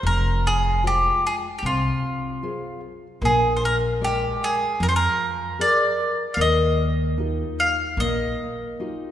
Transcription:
0.03 1.07 F1 medium
0.03 0.81 F3 medium
0.03 0.46 A#4 medium
0.47 0.83 G#4 medium
0.83 1.47 G#3 soft
0.83 1.47 F4 soft
0.83 1.26 G4 medium
0.83 1.48 C5 medium
1.27 1.35 G#4 medium
1.59 1.64 G4 medium
1.63 1.89 C2 medium
1.63 2.41 C3 medium
1.63 2.80 F4 medium
2.43 3.06 F4 soft
2.43 3.06 G#4 soft
2.43 3.07 C5 medium
3.21 4.24 A#1 loud
3.21 3.98 A#3 medium
3.25 3.57 G#4 medium
3.57 3.62 C5 medium
3.65 3.75 A#4 medium
4.01 4.64 G#3 soft
4.01 4.43 G4 medium
4.01 4.65 A#4 soft
4.01 4.65 D5 medium
4.44 4.83 G#4 medium
4.80 5.06 F2 loud
4.80 5.57 F3 medium
4.80 4.88 A#4 medium
4.89 4.94 C5 medium
4.96 5.61 A#4 medium
5.59 6.22 G#4 soft
5.59 6.22 A#4 soft
5.59 6.22 D5 medium
5.59 6.34 D5 medium
6.34 7.41 D#2 loud
6.34 6.39 F5 medium
6.38 7.15 D#3 medium
6.38 7.63 D#5 medium
7.18 7.82 D#4 soft
7.18 7.82 F4 soft
7.18 7.82 G4 soft
7.60 8.00 F5 medium
7.97 8.23 A#1 medium
7.97 8.77 A#3 medium
7.97 9.11 D#5 medium
8.80 9.11 D#4 soft
8.80 9.11 F4 soft
8.80 9.11 G4 soft

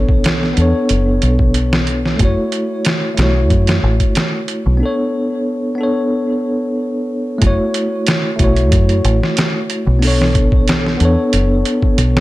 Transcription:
0.00 0.54 B1 loud
0.00 0.51 B3 medium
0.00 0.53 D4 medium
0.00 0.54 A4 medium
0.00 0.55 C#5 medium
0.09 kick medium
0.24 snare loud
0.24 closed hi-hat medium
0.43 snare soft
0.53 0.72 E2 medium
0.53 2.14 B3 medium
0.53 2.16 D4 medium
0.53 closed hi-hat medium
0.59 2.17 A4 medium
0.59 2.19 C#5 medium
0.89 1.19 F#1 medium
0.89 closed hi-hat medium
1.22 2.17 B1 medium
1.22 closed hi-hat medium
1.39 kick medium
1.54 closed hi-hat medium
1.73 snare loud
1.87 closed hi-hat medium
2.06 snare soft
2.16 2.35 F#1 loud
2.16 3.12 A3 medium
2.16 3.14 E4 medium
2.16 kick medium
2.16 closed hi-hat medium
2.22 3.15 F#4 medium
2.22 3.16 C#5 medium
2.52 closed hi-hat medium
2.85 snare loud
2.85 closed hi-hat medium
3.15 3.51 B1 medium
3.15 4.75 A3 medium
3.15 4.77 E4 medium
3.15 closed hi-hat medium
3.19 4.78 F#4 medium
3.19 4.79 C#5 medium
3.19 snare loud
3.50 3.79 F#2 medium
3.50 kick medium
3.50 closed hi-hat medium
3.67 snare medium
3.67 closed hi-hat medium
3.83 3.98 A1 loud
4.00 kick medium
4.00 closed hi-hat medium
4.15 snare loud
4.15 closed hi-hat medium
4.48 closed hi-hat medium
4.66 4.81 B1 loud
4.77 5.73 B3 medium
4.77 5.74 D4 medium
4.83 5.76 A4 medium
4.83 5.77 C#5 medium
5.75 7.36 B3 medium
5.75 7.38 D4 medium
5.81 7.39 A4 medium
5.81 7.40 C#5 medium
7.38 7.57 F#1 loud
7.38 8.34 A3 medium
7.38 8.35 E4 medium
7.38 kick loud
7.38 closed hi-hat medium
7.44 8.37 F#4 medium
7.44 8.38 C#5 loud
7.74 closed hi-hat medium
8.07 snare loud
8.07 closed hi-hat medium
8.36 8.72 B1 medium
8.36 9.97 A3 medium
8.36 9.98 E4 medium
8.36 kick medium
8.36 closed hi-hat medium
8.42 10.00 F#4 medium
8.42 10.01 C#5 medium
8.56 closed hi-hat soft
8.72 9.01 F#2 medium
8.72 kick loud
8.72 closed hi-hat medium
8.89 closed hi-hat soft
9.05 9.20 A1 loud
9.05 closed hi-hat medium
9.23 snare soft
9.37 snare loud
9.37 closed hi-hat medium
9.70 closed hi-hat medium
9.87 10.97 B1 loud
9.99 10.95 B3 medium
9.99 10.96 D4 medium
9.99 open hi-hat medium
10.05 10.98 A4 medium
10.05 10.99 C#5 medium
10.22 snare medium
10.35 kick loud
10.35 closed hi-hat medium
10.52 kick medium
10.68 snare loud
10.68 closed hi-hat medium
10.86 snare soft
10.97 11.15 E2 medium
10.97 12.20 B3 medium
10.97 12.20 D4 medium
10.97 closed hi-hat medium
11.02 12.20 A4 medium
11.02 12.20 C#5 medium
11.33 11.62 F#1 medium
11.33 closed hi-hat medium
11.65 closed hi-hat medium
11.82 kick medium
11.98 12.20 B1 medium
11.98 closed hi-hat medium
12.17 snare loud

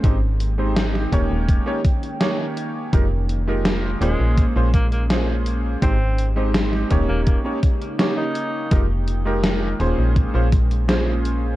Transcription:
0.03 1.06 G#1 loud
0.03 1.47 D#3 medium
0.03 0.16 G#3 medium
0.03 1.48 G#3 medium
0.03 0.16 C4 medium
0.03 0.16 D#4 medium
0.03 1.47 D#4 medium
0.03 0.17 G4 medium
0.03 0.17 C5 medium
0.03 4.34 G5 medium
0.03 kick loud
0.03 closed hi-hat medium
0.40 closed hi-hat medium
0.58 1.08 G#3 medium
0.58 1.08 C4 medium
0.58 1.08 D#4 medium
0.58 1.08 G4 medium
0.58 1.09 C5 medium
0.76 snare loud
0.76 closed hi-hat medium
0.95 snare soft
1.12 1.27 D#1 loud
1.12 1.62 A#3 medium
1.12 1.63 C#4 medium
1.12 1.63 D#4 medium
1.12 1.63 G4 medium
1.12 1.63 C#5 loud
1.12 kick medium
1.12 closed hi-hat medium
1.31 1.59 D#1 medium
1.48 4.35 D#3 medium
1.48 5.78 A#3 medium
1.48 2.92 C#4 medium
1.48 kick loud
1.48 closed hi-hat medium
1.66 1.78 A#3 medium
1.66 1.79 C#4 medium
1.66 1.79 D#4 medium
1.66 1.79 G4 medium
1.66 1.79 C#5 loud
1.85 kick loud
1.85 closed hi-hat medium
2.03 closed hi-hat soft
2.20 2.89 A#3 medium
2.20 2.89 C#4 medium
2.20 2.89 D#4 medium
2.20 2.89 G4 medium
2.20 2.90 C#5 medium
2.20 snare loud
2.20 closed hi-hat medium
2.57 closed hi-hat medium
2.93 3.96 F1 loud
2.93 3.05 G#3 medium
2.93 5.80 G#3 medium
2.93 3.05 D#4 medium
2.93 3.06 F4 medium
2.93 3.06 G4 medium
2.93 3.06 A#4 medium
2.93 kick loud
2.93 closed hi-hat medium
3.29 closed hi-hat medium
3.48 3.97 G#3 medium
3.48 3.98 D#4 medium
3.48 3.98 F4 medium
3.48 3.98 G4 medium
3.48 3.98 A#4 medium
3.65 snare loud
3.65 closed hi-hat medium
4.01 4.16 D#1 loud
4.01 4.45 G#3 medium
4.01 4.51 A#3 medium
4.01 4.52 C#4 medium
4.01 4.52 F4 medium
4.01 4.52 G#4 medium
4.01 4.52 C5 loud
4.01 closed hi-hat medium
4.20 4.48 A#1 medium
4.38 5.81 C#4 medium
4.38 kick loud
4.38 closed hi-hat medium
4.56 5.76 A#1 medium
4.56 4.68 A#3 medium
4.56 4.68 C#4 medium
4.56 4.68 F4 medium
4.56 4.68 G#4 medium
4.56 4.69 C5 loud
4.74 4.86 A#3 medium
4.74 kick loud
4.74 closed hi-hat medium
4.92 5.04 A#3 medium
4.92 closed hi-hat soft
5.10 5.78 A#3 medium
5.10 5.78 C#4 medium
5.10 5.78 F4 medium
5.10 5.79 G#4 medium
5.10 5.79 C5 medium
5.10 snare loud
5.10 closed hi-hat medium
5.46 closed hi-hat medium
5.82 6.85 G#1 loud
5.82 5.94 G#3 medium
5.82 7.26 G#3 medium
5.82 5.94 C4 medium
5.82 6.26 C4 loud
5.82 5.95 D#4 medium
5.82 8.69 D#4 medium
5.82 8.69 G4 medium
5.82 5.95 G4 medium
5.82 5.95 C5 medium
5.82 kick loud
5.82 closed hi-hat medium
6.18 closed hi-hat medium
6.36 6.86 G#3 medium
6.36 6.86 C4 medium
6.36 6.87 D#4 medium
6.36 6.87 G4 medium
6.36 6.87 C5 medium
6.54 snare loud
6.54 closed hi-hat medium
6.73 snare soft
6.90 7.05 D#1 loud
6.90 7.41 A#3 medium
6.90 7.41 C#4 medium
6.90 7.41 D#4 medium
6.90 7.41 G4 medium
6.90 7.41 C#5 loud
6.90 kick medium
6.90 closed hi-hat medium
7.08 7.37 D#1 medium
7.08 7.20 A#3 medium
7.27 8.71 C#3 medium
7.27 7.39 A#3 medium
7.27 11.56 A#3 medium
7.27 kick loud
7.27 closed hi-hat medium
7.44 7.57 A#3 medium
7.44 7.57 C#4 medium
7.44 7.57 D#4 medium
7.44 7.57 G4 medium
7.44 7.57 C#5 loud
7.63 kick loud
7.63 closed hi-hat medium
7.82 closed hi-hat soft
7.98 8.67 A#3 medium
7.98 8.67 C#4 medium
7.98 8.67 D#4 medium
7.98 8.67 G4 medium
7.98 8.68 C#5 medium
7.98 snare loud
7.98 closed hi-hat medium
8.18 8.79 D#4 loud
8.35 closed hi-hat medium
8.71 9.74 F1 medium
8.71 10.15 D#3 medium
8.71 8.83 G#3 medium
8.71 11.56 G#3 medium
8.71 8.84 D#4 medium
8.71 8.84 F4 medium
8.71 8.84 G4 medium
8.71 8.84 A#4 medium
8.71 10.15 G5 medium
8.71 kick loud
8.71 closed hi-hat medium
9.08 closed hi-hat medium
9.25 9.75 G#3 medium
9.25 9.76 D#4 medium
9.25 9.76 F4 medium
9.25 9.76 G4 medium
9.25 9.76 A#4 loud
9.44 snare loud
9.44 closed hi-hat medium
9.80 9.94 D#1 loud
9.80 10.30 A#3 medium
9.80 10.30 C#4 medium
9.80 10.30 F4 medium
9.80 10.30 G#4 medium
9.80 10.31 C5 loud
9.80 closed hi-hat medium
9.98 10.27 A#1 medium
10.16 11.56 C#4 medium
10.16 kick loud
10.16 closed hi-hat medium
10.34 11.55 A#1 medium
10.34 10.46 A#3 medium
10.34 10.46 C#4 medium
10.34 10.46 F4 medium
10.34 10.47 G#4 medium
10.34 10.47 C5 loud
10.52 kick medium
10.52 closed hi-hat medium
10.71 closed hi-hat soft
10.88 11.56 A#3 medium
10.88 11.56 C#4 medium
10.88 11.56 F4 medium
10.88 11.56 G#4 medium
10.88 11.56 C5 medium
10.88 snare loud
10.88 closed hi-hat medium
11.25 closed hi-hat medium

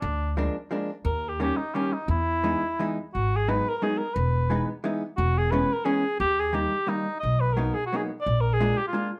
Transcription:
0.01 0.47 D2 loud
0.01 0.34 D4 medium
0.37 0.55 F3 medium
0.37 0.55 G#3 medium
0.37 0.55 A#3 medium
0.37 0.56 D4 medium
0.71 0.89 F3 medium
0.71 0.89 G#3 medium
0.71 0.90 A#3 medium
0.71 0.90 D4 medium
1.05 1.50 D#2 loud
1.05 1.30 A#4 loud
1.29 1.40 G4 medium
1.40 1.58 D#3 medium
1.40 1.58 G3 medium
1.40 1.58 A#3 medium
1.40 1.58 C#4 medium
1.40 1.58 G4 medium
1.57 1.76 D#4 medium
1.74 1.92 D#3 medium
1.74 1.93 G3 medium
1.74 1.93 A#3 soft
1.74 1.93 C#4 medium
1.74 1.94 G4 medium
1.93 2.09 D#4 medium
2.08 2.54 E2 loud
2.08 2.93 E4 loud
2.44 2.62 E3 medium
2.44 2.62 G#3 medium
2.44 2.62 B3 medium
2.44 2.62 D#4 medium
2.79 2.97 E3 medium
2.79 2.97 G#3 medium
2.79 2.97 B3 medium
2.79 2.98 D#4 medium
3.13 3.59 G#1 medium
3.13 3.38 F#4 loud
3.36 3.50 G#4 medium
3.48 3.66 F#3 medium
3.48 3.66 G#3 medium
3.48 3.67 B3 medium
3.48 3.67 D#4 medium
3.48 3.71 B4 medium
3.69 3.77 A#4 loud
3.77 3.85 A#4 medium
3.82 4.00 F#3 medium
3.82 4.00 G#3 medium
3.82 4.00 B3 medium
3.82 4.00 D#4 medium
3.82 3.99 G#4 medium
3.98 4.16 A#4 medium
4.14 4.60 E1 loud
4.14 4.67 B4 loud
4.50 4.68 E3 medium
4.50 4.68 G#3 medium
4.50 4.68 B3 medium
4.50 4.69 D#4 medium
4.84 5.02 E3 medium
4.84 5.02 G#3 medium
4.84 5.02 B3 medium
4.84 5.02 D#4 medium
5.17 5.62 E1 loud
5.17 5.40 F#4 loud
5.38 5.53 G#4 loud
5.51 5.70 E3 medium
5.51 5.70 G#3 medium
5.51 5.70 B3 medium
5.51 5.70 C#4 medium
5.51 5.75 B4 loud
5.73 5.87 A#4 loud
5.85 6.03 E3 medium
5.85 6.03 G#3 medium
5.85 6.04 B3 medium
5.85 6.04 C#4 medium
5.85 6.20 G#4 medium
6.20 6.65 D#2 loud
6.20 6.41 G4 loud
6.40 6.56 G#4 loud
6.53 6.72 D#3 medium
6.53 6.72 G3 medium
6.53 6.72 A#3 medium
6.53 6.72 D#4 medium
6.53 6.90 G4 loud
6.87 7.06 D#3 medium
6.87 7.06 G3 medium
6.87 7.07 A#3 medium
6.87 7.07 D#4 medium
6.87 7.15 D#4 medium
7.20 7.68 B1 medium
7.20 7.42 D#5 loud
7.40 7.54 B4 loud
7.53 7.75 F#3 medium
7.53 7.76 A#4 medium
7.57 7.75 A#3 medium
7.57 7.75 B3 medium
7.57 7.76 D#4 medium
7.74 7.85 G#4 medium
7.86 7.97 F#4 medium
7.93 8.10 F#3 medium
7.93 8.11 A#3 medium
7.93 8.10 B3 medium
7.93 8.11 D#4 medium
7.93 8.02 G#4 medium
8.21 8.42 D5 loud
8.26 8.70 A#1 medium
8.41 8.55 A#4 medium
8.54 8.78 G#4 loud
8.60 8.77 G#3 medium
8.60 8.78 A#3 medium
8.60 8.78 D4 medium
8.60 8.78 F4 medium
8.77 8.87 G4 loud
8.87 9.11 F4 medium
8.93 9.10 G#3 medium
8.93 9.11 A#3 medium
8.93 9.10 D4 soft
8.93 9.11 F4 medium

